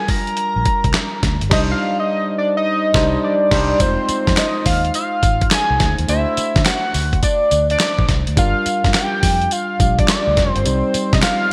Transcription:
Already playing: G3 D4 F4 A#4 G#5
0.08 A#5, kick, open hi-hat
0.27 closed hi-hat
0.37 closed hi-hat
0.56 A#1
0.65 kick, closed hi-hat
0.84 C2, kick, closed hi-hat
0.94 snare, clap, closed hi-hat
1.23 D2, kick, snare, closed hi-hat
1.41 G1, closed hi-hat
1.50 C2 G3 D4 D#4 C5 D#5, kick, snare, crash
1.71 F5
2.00 D#5
2.38 D5
2.57 D#5
2.94 C2 G3 D4 D#4 C5, kick, snare
3.24 D5
3.51 C2 G3 D4 D#4 C5, kick, snare, crash
3.79 F1 G#3 D#4 F4 C5, kick, closed hi-hat, tambourine
4.09 muted fingered electric bass stroke, closed hi-hat, tambourine
4.27 F2, kick, snare, closed hi-hat
4.37 D#5, snare, clap, closed hi-hat, tambourine
4.66 D#2 F5, kick, open hi-hat, tambourine
4.85 closed hi-hat
4.94 F5, closed hi-hat, tambourine
5.23 G#1, kick, closed hi-hat, tambourine
5.41 kick, closed hi-hat
5.51 G#5, snare, clap, closed hi-hat, tambourine
5.70 C2
5.80 D2, kick, snare, closed hi-hat
5.98 D#2, closed hi-hat
6.07 D2 A3 D4 F#4 C5 E5, closed hi-hat, tambourine
6.37 muted fingered electric bass stroke, closed hi-hat, tambourine
6.56 D3, kick, snare, closed hi-hat
6.66 F#5, snare, clap, closed hi-hat, tambourine
6.94 D2, open hi-hat, tambourine
7.13 kick, closed hi-hat
7.23 D5, kick, closed hi-hat, tambourine
7.51 D2, closed hi-hat, tambourine
7.70 D5, closed hi-hat
7.80 snare, clap, closed hi-hat, tambourine
7.99 A#1, kick
8.09 C2, kick, snare, closed hi-hat
8.27 D2, closed hi-hat
8.36 G1 G3 D4 F4 A#4 F5, kick, closed hi-hat, tambourine
8.66 muted fingered electric bass stroke, closed hi-hat, tambourine
8.84 G2, kick, snare, closed hi-hat
8.94 G5, snare, clap, closed hi-hat, tambourine
9.23 F2, kick, open hi-hat, tambourine
9.42 closed hi-hat
9.51 F5, closed hi-hat, tambourine
9.79 A#1 G3 D4 F4 G4, kick, closed hi-hat, tambourine
9.99 D5, kick, closed hi-hat
10.08 D5, snare, clap, closed hi-hat, tambourine
10.27 D2
10.37 F1, kick, snare, closed hi-hat
10.50 C5
10.56 G1, closed hi-hat
10.65 C2 G3 C4 D#4 C5, closed hi-hat, tambourine
10.94 muted fingered electric bass stroke, closed hi-hat, tambourine
11.13 C3 D#5, kick, snare, closed hi-hat
11.23 F5, snare, clap, closed hi-hat, tambourine

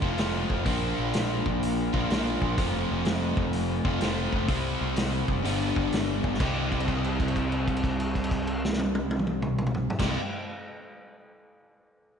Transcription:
0.02 F1 F2 C3 F3 A3 C4 F4, kick
0.17 F1 F2 C3 F3 A3 C4 F4, snare, open hi-hat
0.50 F1, kick
0.64 A#1 A#2 F3 A#3 D4 F4, kick, open hi-hat
0.99 A#1
1.14 A#1, snare, open hi-hat
1.46 A#1, kick
1.63 A#1, open hi-hat
1.93 A#1 A#2 F3 A#3 D4 F4, kick
2.09 A#1 A#2 F3 A#3 D4 F4, snare, open hi-hat
2.42 A#1, kick
2.57 F1 F2 C3 F3 A3 C4 F4, kick, open hi-hat
2.91 F1
3.05 F1, snare, open hi-hat
3.37 F1, kick
3.53 F1, open hi-hat
3.85 F1 F2 C3 F3 A3 C4 F4, kick
4.00 F1 F2 C3 F3 A3 C4 F4, snare, open hi-hat
4.33 F1, kick
4.47 C2 C3 G3 C4 E4, kick, open hi-hat
4.81 C2
4.96 C2, snare, open hi-hat
5.28 F1, kick
5.43 G1 G2 D3 G3 B3 D4, open hi-hat
5.76 G1, kick
5.92 G1, snare, open hi-hat
6.24 G1, kick
6.34 snare
6.39 C2 C3 G3 C4 E4, kick, crash
6.43 G4
6.72 kick, crash
6.80 crash
6.88 kick, crash
7.04 crash
7.20 kick, crash
7.28 crash
7.36 kick, crash
7.52 crash
7.68 kick, crash
7.77 crash
7.84 kick, crash
8.00 crash
8.15 kick, crash
8.24 crash
8.31 kick, crash
8.47 crash
8.65 snare
8.73 snare
8.79 high tom
8.95 high tom
9.11 high tom
9.19 mid tom
9.27 mid tom
9.42 mid tom
9.58 mid tom
9.66 mid tom
9.74 floor tom
9.90 floor tom
9.99 C2 C3 G3 C4 E4, kick, snare, crash
10.03 G4

